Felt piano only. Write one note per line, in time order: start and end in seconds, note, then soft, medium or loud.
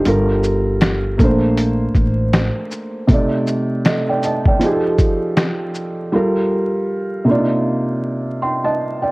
0.00 0.27 D4 medium
0.00 0.26 G4 medium
0.05 1.19 G3 medium
0.05 1.19 F4 medium
0.05 1.20 A4 medium
0.05 1.20 A#4 medium
1.18 3.05 A3 medium
1.18 3.04 A#3 medium
1.22 3.06 D4 medium
1.22 3.07 C5 medium
3.08 4.57 C3 medium
3.08 4.58 A3 medium
3.12 4.59 D#4 medium
3.12 3.86 D5 medium
3.86 4.07 A4 medium
3.86 4.07 D#5 medium
4.09 4.23 D5 medium
4.09 4.23 G5 medium
4.24 4.45 D#5 medium
4.24 4.45 A5 medium
4.47 4.83 D5 medium
4.47 4.82 G5 medium
4.59 6.09 F3 medium
4.59 6.10 D#4 medium
4.63 6.11 G4 medium
4.63 4.71 G#4 medium
4.72 6.13 A4 medium
6.12 7.26 G3 medium
6.12 7.27 F4 medium
6.12 7.27 A4 medium
6.12 7.28 A#4 medium
7.25 9.12 C3 medium
7.25 9.12 A#3 medium
7.25 7.35 D4 medium
7.30 9.12 F4 medium
7.30 8.40 D5 medium
7.34 9.12 D#4 medium
8.42 8.63 G5 medium
8.42 8.63 C6 medium
8.64 9.00 D#5 medium
8.64 9.00 A5 medium
9.02 9.12 D5 soft
9.02 9.12 G5 medium